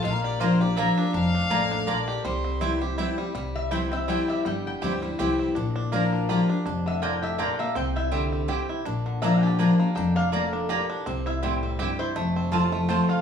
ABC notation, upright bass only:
X:1
M:3/4
L:1/8
Q:"Swing" 1/4=163
K:Cmix
V:1 name="Upright bass" clef=bass
B,,,6 | F,,,2 A,,,2 B,,,2 | C,,6 | C,,6 |
G,,,2 D,,2 C,,2 | B,,,6 | F,,,6 | C,,6 |
B,,,6 | F,,,6 | C,,6 | F,,,6 |]